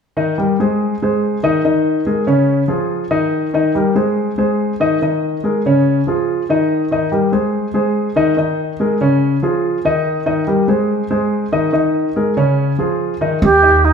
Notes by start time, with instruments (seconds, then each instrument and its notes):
0.17 grand piano D#3 D#4 D#5
0.38 grand piano G3 G4 A#4
0.60 grand piano G#3 G#4 C5
1.02 grand piano G#3 G#4 C5
1.43 grand piano D#3 D#4 D#5
1.65 grand piano D#3 D#4 D#5
2.06 grand piano G#3 G#4 A#4
2.27 grand piano C#3 C#4 C#5
2.68 grand piano F3 F4 G#4
3.11 grand piano D#3 D#4 D#5
3.54 grand piano D#3 D#4 D#5
3.75 grand piano G3 G4 A#4
3.95 grand piano G#3 G#4 C5
4.38 grand piano G#3 G#4 C5
4.80 grand piano D#3 D#4 D#5
5.02 grand piano D#3 D#4 D#5
5.44 grand piano G#3 G#4 A#4
5.66 grand piano C#3 C#4 C#5
6.07 grand piano F3 F4 G#4
6.49 grand piano D#3 D#4 D#5
6.91 grand piano D#3 D#4 D#5
7.12 grand piano G3 G4 A#4
7.32 grand piano G#3 G#4 C5
7.74 grand piano G#3 G#4 C5
8.16 grand piano D#3 D#4 D#5
8.37 grand piano D#3 D#4 D#5
8.80 grand piano G#3 G#4 A#4
9.01 grand piano C#3 C#4 C#5
9.43 grand piano F3 F4 G#4
9.85 grand piano D#3 D#4 D#5
10.26 grand piano D#3 D#4 D#5
10.47 grand piano G3 G4 A#4
10.68 grand piano G#3 G#4 C5
11.11 grand piano G#3 G#4 C5
11.52 grand piano D#3 D#4 D#5
11.72 grand piano D#3 D#4 D#5
12.16 grand piano G#3 G#4 A#4
12.37 grand piano C#3 C#4 C#5
12.79 grand piano F3 F4 G#4
13.21 grand piano D#3 D#4 D#5
13.42 upright bass D#2, alto flute G4
13.62 grand piano D#4 D#5
13.85 alto flute D#4